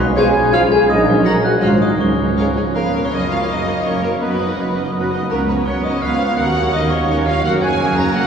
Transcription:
Already playing: B1 G#3
0.00 B4 B5
0.16 F3 G#4 C#5 F5 G#5 G#6
0.52 F3 F4 G#4 C#5 F5 F6
0.71 G#4 G#5 G#6
0.88 A#1 F#3 D#4 D#5 D#6
1.06 C#4 C#5 C#6
1.25 F#3 F#4 A#4 C#5 F#5 A#5 A#6
1.43 F#4 F#5 F#6
1.61 G#1 F#3 G#3 F4 F#4 C5 D#5 F5 F6
1.81 D#4 D#5 D#6
1.99 C#2 F3 C#4 C#5 C#6
2.38 F3 G#4 A#4 C#5 F5
2.56 G#4
2.74 F3 A#3 G#4 A#4 F5 A#5
2.85 B3 B4 B5
2.94 A#3 A#4 A#5
3.03 C#4 C#5 C#6
3.12 F#1 A#3 D#4 A#4 C#5 D#5 D#6
3.30 C#4 F4 C#5 F5 F6
3.48 F#1 A#3 D#4 F#4 A#4 D#5 D#6
3.69 C#4 C#5
3.85 F#1 A#3 C#4 F#4 A#4 C#5 C#6
4.04 A#3 C#4 A#4 C#5 A#5
4.21 F#1 B3 F#4 B4 D#5 B5
4.41 D#4 D#5
4.57 F#1 B3 D#4 F#4 B4
4.78 D#4 D#5
4.93 F#1 B3 D#4 F#4 B4
5.13 D#4 D#5
5.29 C#2 A#3 B3 A#4 B4 C#5 A#5
5.48 B3 C#4 B4 C#5 B5
5.66 C#2 B3 C#4 B4 C#5 C#6
5.84 C#4 D#4 C#5 D#5 D#6
6.01 C#2 B3 C#4 F4 B4 F5 F6
6.21 C#4 C#5
6.36 D#2 A#3 D#4 F#4 A#4 F#5 F#6
6.56 C#4 C#5
6.73 D#2 A#3 C#4 D#4 A#4 D#5 D#6
6.90 C#4 C#5 C#6
7.08 D#2 A#3 C#4 D#4 A#4 C#5 C#6
7.26 C#4 F4 C#5 F5 F6
7.44 F#1 A#3 C#4 F#4 A#4 F#5 F#6
7.61 C#4 G#4 C#5 G#5 G#6
7.80 F#1 A#3 A#4 C#5
7.97 C#4 A#4 C#5 A#5 A#6
8.15 F#1 A#3 F#4 A#4 C#5 F#5 F#6

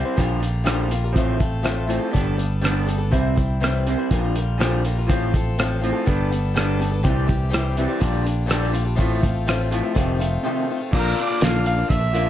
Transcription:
Already playing: C3 G3 C4
0.05 G3 C4 E4 C5
0.16 A#1 A#2 D3 F3 G3 F4 A#4, kick, closed hi-hat
0.40 A#2 D3 G3 F4 A#4, closed hi-hat
0.64 A#2 D3 F3 G3 F4 A#4, cross-stick, closed hi-hat
0.89 A#2 D3 G3 F4 A#4, closed hi-hat
1.04 D3 G3 F4 A#4
1.13 A1 A2 F3 A3 C4 F4, kick, closed hi-hat
1.17 A4
1.38 A2 F3 A3 C4 F4 A4, kick, closed hi-hat
1.63 A2 F3 A3 C4 F4 A4, cross-stick, closed hi-hat
1.87 A2 F3 A3 C4 F4 A4, closed hi-hat
1.99 C4 F4 A4
2.13 G1 G3 B3 D4 A4, kick, closed hi-hat
2.37 G3 B3 D4 A4, closed hi-hat
2.61 G3 B3 D4 A4, cross-stick, closed hi-hat
2.86 G3 B3 D4 A4, closed hi-hat
2.98 B3 D4 A4
3.11 C2 C3 E3 G3 C4 E4 C5, kick, closed hi-hat
3.35 C3 G3 C4 E4 C5, kick, closed hi-hat
3.60 C3 E3 G3 C4 E4 C5, cross-stick, closed hi-hat
3.87 C3 G3 C4 E4 C5, closed hi-hat
3.98 G3 C4 E4 C5
4.11 A#1 A#2 D3 F3 G3 F4 A#4, kick, closed hi-hat
4.35 A#2 D3 G3 F4 A#4, closed hi-hat
4.59 A#2 D3 F3 G3 F4 A#4, cross-stick, closed hi-hat
4.83 A#2 D3 G3 F4 A#4, closed hi-hat
4.97 D3 G3 F4 A#4
5.09 A1 A2 F3 C4 F4 A4, kick, closed hi-hat
5.34 A2 F3 C4 F4 A4, kick, closed hi-hat
5.58 A2 F3 C4 F4 A4, cross-stick, closed hi-hat
5.79 F3 C4 F4 A4
5.84 A2 F3, closed hi-hat
5.92 C4 F4 A4
6.05 G1 G3 B3 D4 A4, kick, closed hi-hat
6.30 G3 B3 D4 A4, closed hi-hat
6.54 G3 B3 D4 A4, cross-stick, closed hi-hat
6.79 G3 B3 D4 A4, closed hi-hat
6.91 B3 D4 A4
7.03 C2 C3 E3 G3 C4 G4, kick, closed hi-hat
7.26 C3 E3 G3 C4 G4, kick, closed hi-hat
7.49 C3 E3 G3 C4 G4
7.53 cross-stick, closed hi-hat
7.77 C3 E3 G3 C4 G4, closed hi-hat
7.88 G3 C4 G4
7.99 A#1 A#2 D3 G3 D4 F4, kick, closed hi-hat
8.24 A#2 D3 G3 D4 F4, closed hi-hat
8.46 A#2 D3 G3 D4 F4, closed hi-hat
8.51 cross-stick
8.72 A#2 D3 G3 D4 F4, closed hi-hat
8.84 G3 D4 F4
8.96 A2 F3 A3 C4 F4, kick, closed hi-hat
9.00 A1
9.20 A2 F3 A3 C4 F4, kick, closed hi-hat
9.24 F3
9.47 A2 F3 A3 C4 F4, cross-stick, closed hi-hat
9.70 A2 F3 A3 C4 F4, closed hi-hat
9.83 A3 C4 F4
9.94 F1 F2 C3 D#3 A3 C4 F4, kick, closed hi-hat
10.18 F2 C3 D#3 A3 C4 F4, closed hi-hat
10.44 F2 C3 D#3 A3 C4 F4
10.67 F2 C3 D#3 A3 C4
10.71 F4
10.80 D#3 A3 C4 F4
10.93 A#1 A#2 D3 A#3 D4 F4, kick, crash
10.99 A#4
11.17 D3 A#3 D4 F4, closed hi-hat
11.22 D5
11.29 A#3 D4 F4
11.41 A#1 A#2 D3 A#3 D4 F4 F5, snare, closed hi-hat
11.66 F5, closed hi-hat
11.75 A#3 D4 F4
11.88 A#1 D3 A#3 D4 F4 E5, kick, closed hi-hat
11.99 A#3 D4 F4
12.13 A#2 D3 A#3 D4 F4, closed hi-hat
12.23 A#3 D4 F4

